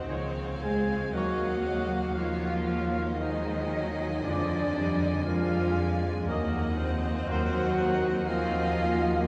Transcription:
Already playing: viola section C4
0.07 double bass section C#2, trombone section F3 G#3, clarinet G#4, trumpet section C#5, violin section C#5 F5
0.61 cello section G#3, french horn section G#4, clarinet C5, violin section F5, oboe G#5, flute G#5
1.13 double bass section D#2, trombone section D#3 A#3, cello section F#3, viola section A#3, french horn section F#4, clarinet A#4, trumpet section C#5, violin section D#5, oboe F#5, flute F#5
1.67 clarinet C#5
2.15 cello section F3, french horn section F4, clarinet A#4, violin section C#5, oboe F5, flute F5
2.68 violin section C#5
3.18 cello section D#3, viola section G#3, french horn section D#4, clarinet C5, violin section D#5 G#5, oboe D#5, flute D#5
3.72 viola section F#3, clarinet C#5
4.23 double bass section F2, cello section D3, trombone section F3 G#3, viola section F3, french horn section D4, oboe D5, flute D5, trumpet section D5, clarinet D5
4.77 viola section G3
5.25 cello section F3, viola section G#3, french horn section F4, clarinet A#4, violin section C5, oboe F5, flute F5
5.77 clarinet G#4, violin section D5
6.27 double bass section D#2, trombone section F#3 A#3, viola section A#3, clarinet A#4, violin section D#5 F#5, trumpet section D#5
6.77 viola section C4, clarinet C5
7.27 double bass section D#2, trombone section D#3 A#3, cello section F#3, french horn section F#4, clarinet A#4, violin section C5 D#5, trumpet section C5, oboe F#5, flute F#5
7.76 violin section A#4, clarinet C5
8.25 cello section F3, viola section C4, clarinet A#4, violin section D#5 G#5, oboe F5, flute F5
8.30 french horn section F4
8.76 viola section A#3

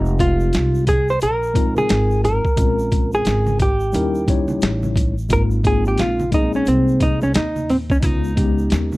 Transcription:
Already playing: upright bass F1, tine electric piano G#3 C4 D#4 F4 G4, hollow-body jazz guitar D#4
0.06 shaker
0.19 hollow-body jazz guitar F4, kick, closed hi-hat, shaker
0.40 shaker
0.53 upright bass C2, snare, closed hi-hat, shaker
0.75 shaker
0.87 hollow-body jazz guitar G#4, kick, closed hi-hat, low conga, shaker
1.08 hollow-body jazz guitar C5, shaker
1.20 upright bass A#1, hollow-body jazz guitar A#4, closed hi-hat, shaker
1.43 shaker
1.54 tine electric piano G#3 C4 D#4 F4 A#4, kick, closed hi-hat, low conga, shaker
1.76 hollow-body jazz guitar G#4, high conga, shaker
1.89 upright bass G#1, snare, closed hi-hat, shaker
2.11 shaker
2.25 hollow-body jazz guitar A#4, closed hi-hat, low conga, shaker
2.45 muted upright bass stroke, kick, shaker
2.56 upright bass A#1, tine electric piano G#3 C4 C#4 F4 A#4, kick, closed hi-hat, shaker
2.79 shaker
2.91 kick, closed hi-hat, high conga, shaker
3.12 hollow-body jazz guitar G#4, shaker
3.25 upright bass G#1, snare, closed hi-hat, high conga, shaker
3.47 high conga, shaker
3.59 hollow-body jazz guitar G4, kick, closed hi-hat, low conga, shaker
3.80 shaker
3.93 upright bass D#2, tine electric piano G3 C#4 D#4 E4 A#4, closed hi-hat, shaker
4.15 shaker
4.26 tine electric piano G3 C#4 D#4 E4 C#5, kick, closed hi-hat, low conga, shaker
4.48 high conga, shaker
4.61 upright bass A1, snare, closed hi-hat, shaker
4.83 high conga, shaker
4.96 kick, closed hi-hat, low conga, shaker
5.18 shaker
5.29 upright bass G#1, tine electric piano G#3 A#3 C4 D#4 F4, hollow-body jazz guitar A#4, kick, closed hi-hat, shaker
5.51 shaker
5.63 tine electric piano G#3 A#3 C4 D#4 F4, hollow-body jazz guitar G#4, kick, closed hi-hat, high conga, shaker
5.85 hollow-body jazz guitar G4, shaker
5.98 upright bass A#1, hollow-body jazz guitar F4, snare, closed hi-hat, high conga, shaker
6.20 high conga, shaker
6.31 tine electric piano G#3 A#3 B3 D#4 G#4, hollow-body jazz guitar D#4, kick, closed hi-hat, low conga, shaker
6.39 tine electric piano C4
6.53 hollow-body jazz guitar C#4, shaker
6.66 upright bass C2, hollow-body jazz guitar C4, closed hi-hat, shaker
6.88 shaker
7.00 hollow-body jazz guitar D#4, kick, closed hi-hat, low conga, shaker
7.21 hollow-body jazz guitar C#4, high conga, shaker
7.34 upright bass D#2, hollow-body jazz guitar D#4, snare, closed hi-hat, shaker
7.56 high conga, shaker
7.70 hollow-body jazz guitar C4, open hi-hat, low conga, shaker
7.90 hollow-body jazz guitar C#4, kick, shaker
8.01 upright bass C#2, tine electric piano G#3 B3 C#4 D#4 F4, hollow-body jazz guitar D#4, kick, closed hi-hat, shaker
8.24 shaker
8.36 tine electric piano G#3 B3 C#4 D#4 G4, kick, closed hi-hat, high conga, shaker
8.58 shaker
8.70 upright bass D#2, snare, closed hi-hat, high conga, shaker
8.92 high conga, shaker

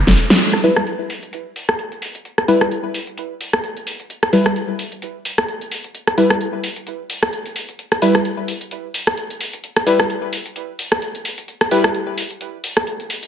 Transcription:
Already playing: fm bass G1
0.07 snare, closed hi-hat, shaker
0.17 open hi-hat, ride
0.30 snare, closed hi-hat, shaker
0.41 closed hi-hat
0.53 cross-stick
0.64 synth stab G3 E4 B4, open hi-hat
0.76 cross-stick, closed hi-hat
0.87 closed hi-hat
1.10 open hi-hat
1.23 closed hi-hat
1.33 closed hi-hat
1.56 open hi-hat
1.69 cross-stick
1.79 closed hi-hat
1.92 closed hi-hat
2.02 open hi-hat
2.15 closed hi-hat
2.25 closed hi-hat
2.38 cross-stick, closed hi-hat
2.48 synth stab G3 E4 B4, open hi-hat
2.61 cross-stick, closed hi-hat
2.71 closed hi-hat
2.94 open hi-hat
3.07 closed hi-hat
3.18 closed hi-hat
3.41 open hi-hat
3.53 cross-stick
3.64 closed hi-hat
3.77 closed hi-hat
3.87 open hi-hat
4.00 closed hi-hat
4.10 closed hi-hat
4.23 cross-stick, closed hi-hat
4.33 synth stab G3 E4 B4, open hi-hat
4.46 cross-stick, closed hi-hat
4.56 closed hi-hat
4.79 open hi-hat
4.92 closed hi-hat
5.02 closed hi-hat
5.25 open hi-hat
5.38 cross-stick
5.48 closed hi-hat
5.61 closed hi-hat
5.72 open hi-hat
5.84 closed hi-hat
5.95 closed hi-hat
6.07 cross-stick, closed hi-hat
6.18 synth stab G3 E4 B4, open hi-hat
6.30 cross-stick, closed hi-hat
6.41 closed hi-hat
6.64 open hi-hat
6.76 closed hi-hat
6.87 closed hi-hat
7.10 open hi-hat
7.23 cross-stick
7.33 closed hi-hat
7.46 closed hi-hat
7.56 open hi-hat
7.69 closed hi-hat
7.79 closed hi-hat
7.92 cross-stick, closed hi-hat
8.02 synth stab G3 E4 B4, open hi-hat
8.15 cross-stick, closed hi-hat
8.25 closed hi-hat
8.48 open hi-hat
8.61 closed hi-hat
8.71 closed hi-hat
8.94 open hi-hat
9.07 cross-stick
9.17 closed hi-hat
9.30 closed hi-hat
9.41 open hi-hat
9.53 closed hi-hat
9.64 closed hi-hat
9.76 cross-stick, closed hi-hat
9.87 synth stab G3 E4 B4, open hi-hat
10.00 cross-stick, closed hi-hat
10.10 closed hi-hat
10.33 open hi-hat
10.46 closed hi-hat
10.56 closed hi-hat
10.79 open hi-hat
10.92 cross-stick
11.02 closed hi-hat
11.15 closed hi-hat
11.25 open hi-hat
11.38 closed hi-hat
11.48 closed hi-hat
11.61 cross-stick, closed hi-hat
11.71 synth stab G3 E4 B4, open hi-hat
11.84 cross-stick, closed hi-hat
11.95 closed hi-hat
12.18 open hi-hat
12.31 closed hi-hat
12.41 closed hi-hat
12.64 open hi-hat
12.77 cross-stick
12.87 closed hi-hat
13.00 closed hi-hat
13.10 open hi-hat
13.23 closed hi-hat

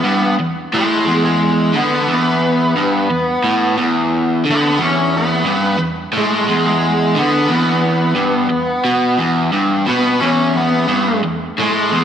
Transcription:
Already playing: lead electric guitar B3
0.04 overdriven electric guitar G2
0.39 overdriven electric guitar E2
0.73 overdriven electric guitar A2, lead electric guitar G#3
1.06 overdriven electric guitar E2
1.25 lead electric guitar G#3
1.73 overdriven electric guitar D3, lead electric guitar B3
2.08 overdriven electric guitar E2
2.77 overdriven electric guitar G2
3.11 overdriven electric guitar E2
3.44 overdriven electric guitar A2
3.77 overdriven electric guitar E2
4.45 overdriven electric guitar D3
4.50 lead electric guitar B3
4.78 overdriven electric guitar E2
4.82 lead electric guitar C#4
5.17 lead electric guitar B3
5.45 overdriven electric guitar G2
5.78 overdriven electric guitar E2
6.13 overdriven electric guitar A2
6.17 lead electric guitar G#3
6.48 overdriven electric guitar E2
6.67 lead electric guitar G#3
7.15 overdriven electric guitar D3, lead electric guitar B3
7.47 overdriven electric guitar E2
8.16 overdriven electric guitar G2
8.50 overdriven electric guitar E2
8.85 overdriven electric guitar B2
9.18 overdriven electric guitar E2
9.53 overdriven electric guitar G2
9.86 overdriven electric guitar B2, lead electric guitar B3
10.20 overdriven electric guitar E2, lead electric guitar C#4
10.56 lead electric guitar B3
10.89 overdriven electric guitar G2
11.24 overdriven electric guitar E2
11.58 overdriven electric guitar A2, lead electric guitar G#3
11.92 overdriven electric guitar E2

